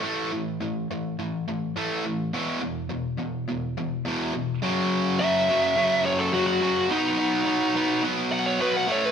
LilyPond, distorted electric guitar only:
\new Staff \with { instrumentName = "Distorted electric guitar" } { \clef bass \time 4/4 \key b \major \tempo 4 = 105 <a, e a>8 <a, e>8 <a, e>8 <a, e>8 <a, e>8 <a, e>8 <a, e a>8 <a, e>8 | <e, b, e>8 <e, b,>8 <e, b,>8 <e, b,>8 <e, b,>8 <e, b,>8 <e, b, e>8 <e, b,>8 | <fis, cis fis>4 <fis, cis fis>8 <fis, cis fis>8 <fis, cis fis>4 <fis, cis fis>8 <fis, cis fis>8 | <b, fis b>4 <b, fis b>8 <b, fis b>8 <b, fis b>4 <b, fis b>8 <a, e a>8 | }